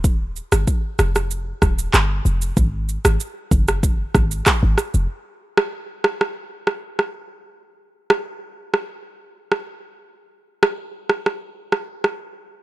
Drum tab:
SH |x-xxx-xxx-xxx-xx|x-xxx-xxx-xxx-xx|----------------|----------------|
CP |------------x---|------------x---|----------------|----------------|
SD |---r--rr--r-r---|---r---r--r-r-r-|---r--rr--r-r---|---r---r----r---|
BD |o---o-----o-----|o-----o-o-o-o---|----------------|----------------|

SH |----------------|
CP |----------------|
SD |---r--rr--r-r---|
BD |----------------|